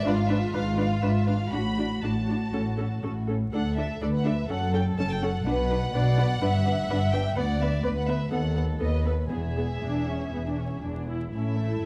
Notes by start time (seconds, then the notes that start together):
0.06 G#1 G#2 D4 F4 B4 D5
0.18 F5
0.30 D4 B4 E5
0.54 G#1 G#2 D4 B4 F5
0.78 D4 B4 F5
1.03 G#1 G#2 D4 B4 E5
1.27 D4 B4 F5
1.53 A1 A2 D4 F#4 B5
1.78 D4 F#4
2.03 A1 A2 D4 F#4 A5
2.28 D4 F#4
2.53 A1 A2 C#4 A4
2.78 C#4 A4
3.03 A1 A2 C#4 A4
3.28 C#4 A4
3.53 D2 D4 A4 F#5
3.77 D4 A4 E5
4.01 D2 D4 A4 B4 D5
4.15 F#5
4.25 D4 A4 E5
4.49 F#1 F#2 C#4 A4 F#5
4.73 C#4 A4 G5
4.98 F#1 F#2 C#4 A4 A5
5.11 G5
5.23 C#4 A4 F#5
5.46 B1 B2 D4 B4 F#5
5.71 D4 B4
5.94 B1 B2 D4 B4 D5
6.18 D4 B4
6.42 G1 G2 D4 B4 E5
6.66 D4 B4
6.89 G1 G2 D4 B4
7.13 D4 B4 G5
7.36 D2 B3 B4 D5 F#5
7.61 B3 B4 E5
7.84 D2 B3 B4 D5
7.97 F#5
8.08 B3 B4 E5
8.32 D#2 B3 A4 F#5
8.56 B3 A4 F#5
8.80 D#2 B3 A4 B4 D#5
9.05 B3 A4 B4
9.31 E1 E2 B3 G#4 E5
9.57 B3 G#4
9.83 E1 E2 D4
10.08 C#4
10.33 E1 E2 B3
10.46 D4
10.59 C#4
10.83 E1 E2 D4
11.09 E4
11.33 A1 A2 C#4 E4 A4 E5
11.59 A3
11.82 F#2